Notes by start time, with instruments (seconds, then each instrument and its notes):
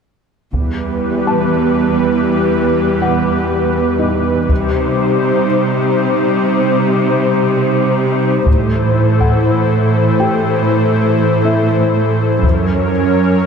0.53 cello section E2, analog synth pad E3 G3 G4 B4, taiko
1.27 felt piano A5
3.02 felt piano F#5
3.99 felt piano D#4 D#5
4.49 cello section C3, analog synth pad G3 D#4 G4 C5, taiko
8.47 cello section A2, analog synth pad E3 E4 A4 C5, taiko
9.20 felt piano F#5, taiko
10.20 felt piano G4 G5
11.45 felt piano E4 E5
12.42 cello section F#2, analog synth pad F#3 C#4 A#4 C#5, taiko